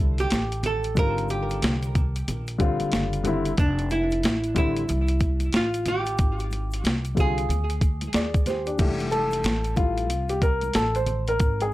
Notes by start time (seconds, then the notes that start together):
Already playing: C2 D3 G3 C4 E4 A4
0.18 G4, closed hi-hat, high conga, shaker
0.30 A1, snare, closed hi-hat, shaker
0.52 closed hi-hat, shaker
0.63 A4, closed hi-hat, high conga, low conga, shaker
0.83 closed hi-hat, shaker
0.95 G#1 D3 G3 C4 F4 A#4, kick, closed hi-hat, shaker
1.17 closed hi-hat, shaker
1.29 G4, closed hi-hat, high conga, shaker
1.50 closed hi-hat, shaker
1.62 C2, snare, closed hi-hat, shaker
1.83 closed hi-hat, shaker
1.95 kick, closed hi-hat, low conga, shaker
2.16 closed hi-hat, shaker
2.28 A#1, closed hi-hat, low conga, shaker
2.47 closed hi-hat, shaker
2.58 D3 G3 C4 F4, kick, closed hi-hat, shaker
2.80 muted upright bass stroke, closed hi-hat, high conga, shaker
2.92 F#1, snare, closed hi-hat, shaker
3.13 closed hi-hat, shaker
3.24 D3 G3 C4 E4, closed hi-hat, high conga, low conga, shaker
3.45 closed hi-hat, shaker
3.58 F1 D4, kick, closed hi-hat, shaker
3.78 closed hi-hat, shaker
3.90 E4, closed hi-hat, high conga, shaker
4.11 closed hi-hat, shaker
4.23 A1, snare, closed hi-hat, shaker
4.44 closed hi-hat, shaker
4.55 D3 G3 C4 E4, kick, closed hi-hat, low conga, shaker
4.76 closed hi-hat, shaker
4.89 C2, closed hi-hat, low conga, shaker
5.07 closed hi-hat, shaker
5.20 kick, closed hi-hat, shaker
5.40 closed hi-hat, high conga, shaker
5.53 F4, snare, closed hi-hat, shaker
5.74 closed hi-hat, shaker
5.86 G4, closed hi-hat, high conga, low conga, shaker
6.06 closed hi-hat, shaker
6.18 G#1, kick, closed hi-hat, shaker
6.39 closed hi-hat, shaker
6.51 closed hi-hat, high conga, shaker
6.71 closed hi-hat, shaker
6.84 C2, snare, closed hi-hat, shaker
7.05 closed hi-hat, shaker
7.15 D3 G3 C4, kick, closed hi-hat, low conga, shaker
7.19 F4 G#4
7.38 closed hi-hat, shaker
7.49 D2, closed hi-hat, low conga, shaker
7.69 closed hi-hat, shaker
7.81 kick, closed hi-hat, shaker
8.01 closed hi-hat, high conga, shaker
8.13 D#2 G#4 D5, snare, closed hi-hat, shaker
8.34 kick, closed hi-hat, shaker
8.46 G4 C5, snare, closed hi-hat, high conga, low conga, shaker
8.66 D4 G4, closed hi-hat, shaker
8.78 F1 E3 G3 A3 G4, kick, closed hi-hat, crash, shaker
8.99 closed hi-hat, high conga, shaker
9.11 A4, closed hi-hat, high conga, shaker
9.31 closed hi-hat, shaker
9.44 A1, snare, closed hi-hat, shaker
9.64 closed hi-hat, shaker
9.76 G3 A3 E4 F4, kick, closed hi-hat, low conga, shaker
9.97 closed hi-hat, shaker
10.10 C2, closed hi-hat, shaker
10.29 G4, closed hi-hat, shaker
10.42 A#4, kick, closed hi-hat, shaker
10.61 closed hi-hat, high conga, shaker
10.73 A1 A4, snare, closed hi-hat, shaker
10.95 C5, closed hi-hat, shaker
11.06 closed hi-hat, high conga, low conga, shaker
11.27 A#4, closed hi-hat, shaker
11.40 G#1, kick, closed hi-hat, shaker
11.60 G#4, closed hi-hat, high conga, shaker